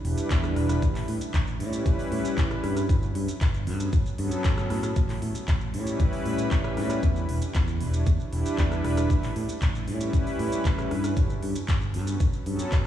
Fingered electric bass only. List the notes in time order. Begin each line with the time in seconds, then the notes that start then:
0.05 E1
0.18 muted fingered electric bass stroke
0.31 E2
0.56 E1
0.82 A1
1.08 A2
1.21 muted fingered electric bass stroke
1.34 A1
1.60 A2
1.86 A1
2.12 A2
2.25 muted fingered electric bass stroke
2.38 A1
2.64 G2
2.89 G1
3.15 G2
3.28 muted fingered electric bass stroke
3.41 G1
3.67 G2
3.93 G1
4.19 G2
4.32 muted fingered electric bass stroke
4.45 G1
4.70 A2
4.97 A1
5.22 A2
5.35 muted fingered electric bass stroke
5.48 A1
5.74 A2
6.00 A1
6.25 A2
6.51 A1
6.77 A2
7.03 E2
7.29 E1
7.42 muted fingered electric bass stroke
7.55 E2
7.81 E1
8.07 E2
8.33 E1
8.46 muted fingered electric bass stroke
8.58 E2
8.85 E1
9.10 A1
9.36 A2
9.49 muted fingered electric bass stroke
9.62 A1
9.88 A2
10.14 A1
10.39 A2
10.53 muted fingered electric bass stroke
10.65 A1
10.92 G2
11.17 G1
11.43 G2
11.56 muted fingered electric bass stroke
11.69 G1
11.95 G2
12.20 G1
12.46 G2
12.59 muted fingered electric bass stroke
12.72 G1